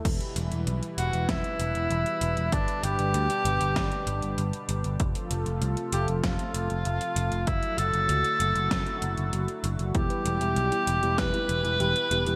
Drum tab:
CC |x---------------|----------------|----------------|----------------|
HH |xxxxxxxxxxxxxxxx|xxxxxxxxxxxxxxxx|xxxxxxxxxxxxxxxx|xxxxxxxxxxxxxxxx|
SD |--------o-------|--------o-------|--------o-------|--------o-------|
BD |o-------o-------|o-------o-------|o-------o-------|o-------o-------|

CC |----------------|
HH |xxxxxxxxxxxxxxxx|
SD |--------o-------|
BD |o-------o-------|